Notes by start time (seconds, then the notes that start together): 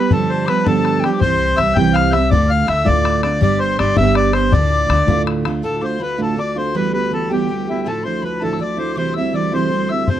Already playing: G3 B3 G4 B4 B5
0.10 G2 D3 F3 G3 B3 D4 A4 A5 B5, bodhran
0.30 C5
0.46 F3 G3 B3 D4 B4 B5 D6, bodhran
0.65 G2 D3 F3 G3 B3 D4 A4 A5, bodhran
0.85 bodhran
1.00 D4 G4 G5, bodhran
1.05 F3 G3 B3
1.13 D6
1.20 C2 C3 E3 G3 C5 C6, bodhran
1.24 C4 G4
1.56 C2 E3 G3 C4 E5 E6, bodhran
1.61 G4
1.74 C2 E3 G3 C4 G4 G5 G6, bodhran
1.78 C3
1.92 F5 G6, bodhran
1.97 F6
2.11 C4 G4 E5 G6, bodhran
2.15 G3 E6
2.31 D2 A2 D3 A3 D4 F4 D5 D6, bodhran
2.48 F5 F6
2.67 D2 D3 A3 D4 F4 E5 E6, bodhran
2.85 D2 A2 D3 A3 D4 F4 D5 D6, bodhran
3.05 bodhran
3.23 D3 A3 D4 F4 D5, bodhran
3.41 G1 G3 B3 D4 G4 D5 D6, bodhran
3.59 C5 C6
3.78 G1 G3 B3 D4 G4 D5, bodhran
3.96 G1 G3 B3 D4 G4 E5 E6, bodhran
4.15 D5 D6, bodhran
4.33 B3 D4 G4 C5 C6, bodhran
4.52 D2 A2 D3 A3 D4 F4 D5 D6, bodhran
4.89 D2 D3 A3 D4 F4, bodhran
5.07 D2 A2 D3 A3 D4 F4, bodhran
5.27 bodhran
5.45 D3 A3 D4 F4, bodhran
5.62 D2 A2 D3 A3 D4 F4 A4 A5
5.80 D3 A3 D4 F4 C5 D6
5.86 C6
5.98 D3 A3 D4 F4 B5
6.03 B4
6.18 D2 A2 D3 A3 D4 F4 A4 B5
6.25 A5
6.36 D3 A3 D4 F4 D5 D6
6.55 D3 A3 D4 F4 C5 C6
6.74 E3 G3 B3 G4 B4 B5
6.92 G3 B3 G4 B4 B5
7.11 E3 G3 B3 G4 A4
7.30 E3 G3 B3 G4 G5
7.48 E3 G3 B3 G4
7.67 G3 B3 E4 G4
7.85 D2 A2 F3 A3 D4 E4 A4 A5
8.03 F3 A3 D4 E4 C5 C6
8.22 F3 A3 D4 E4 B4 B5
8.40 D2 A2 F3 A3 D4 E4 A4 A5
8.53 E6
8.59 F3 A3 D4 E4 D5 E6
8.63 D6
8.77 F3 A3 D4 E4 C5
8.95 C3 E3 G3 C4 E4 C5 C6 D6
9.14 C4 E4 E5 E6
9.18 G3
9.32 E3 G3 C4 E4 D5 E6
9.36 D6
9.52 C3 E3 G3 C4 E4 C5 D6
9.57 C6
9.70 E3 G3 C4 E4
9.89 G3 C4 E4 E5 E6
10.07 D2 F2 C3 F3 A3 C4 D4 C5 C6, bodhran